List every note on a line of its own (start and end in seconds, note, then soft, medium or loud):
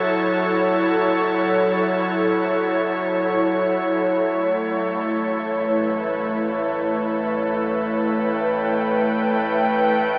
0.00 4.20 F#1 medium
0.00 4.26 F#3 medium
0.00 10.19 E4 medium
0.00 5.86 A4 medium
0.00 10.19 C#5 medium
0.00 4.25 F#5 medium
4.25 10.19 A1 medium
4.25 10.19 A3 medium
5.50 10.19 B4 medium
8.00 10.19 G5 medium